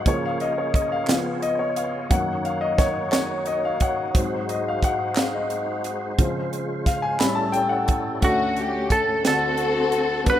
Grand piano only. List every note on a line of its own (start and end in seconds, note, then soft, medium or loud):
0.07 0.52 C#3 medium
0.07 0.52 F3 soft
0.07 0.52 A#3 medium
0.07 0.24 C#5 medium
0.26 0.42 F5 medium
0.41 0.46 D#5 medium
0.58 0.75 C#5 medium
0.75 0.91 D#5 medium
0.92 1.07 F5 medium
1.08 1.54 C#3 soft
1.08 1.54 F3 soft
1.08 1.54 B3 soft
1.08 1.44 F5 medium
1.42 1.60 D#5 medium
1.59 1.77 C#5 medium
1.76 2.11 F5 medium
2.10 3.08 F#2 medium
2.10 3.08 D#3 soft
2.10 3.09 A#3 medium
2.10 2.45 F#5 medium
2.45 2.62 F5 medium
2.61 2.79 D#5 medium
2.79 3.10 C#5 medium
3.12 3.44 C#5 medium
3.47 3.63 D#5 medium
3.65 3.82 F5 medium
3.82 4.51 F#5 medium
4.16 6.15 G#2 medium
4.16 6.15 F#3 soft
4.16 6.16 C4 medium
4.50 4.67 D#5 medium
4.68 4.84 F5 medium
4.84 5.18 F#5 medium
5.18 5.35 F5 medium
5.35 6.32 D#5 medium
6.19 7.17 C#3 medium
6.19 7.17 F3 soft
6.19 7.17 C4 medium
6.86 7.04 F5 medium
7.02 7.20 G#5 medium
7.19 8.18 A2 soft
7.19 8.19 G3 medium
7.19 8.19 C#4 medium
7.19 7.37 B5 medium
7.35 7.54 A5 medium
7.52 7.71 G5 loud
7.69 8.18 F#5 medium
8.21 9.20 D2 medium
8.21 9.20 D3 medium
8.21 9.14 A3 medium
8.21 9.15 C#4 medium
8.21 9.16 A4 medium
8.21 9.15 F#5 medium
9.23 10.23 D2 soft
9.23 10.23 D3 soft
9.23 10.16 A3 soft
9.23 10.17 C4 soft
9.23 10.17 D4 soft
9.23 10.18 F#4 soft
9.23 10.18 A4 medium
10.24 10.40 G1 soft
10.24 10.40 G2 medium
10.24 10.40 G3 medium
10.24 10.40 B3 medium
10.24 10.40 D4 medium
10.24 10.40 F#4 medium
10.24 10.40 B4 medium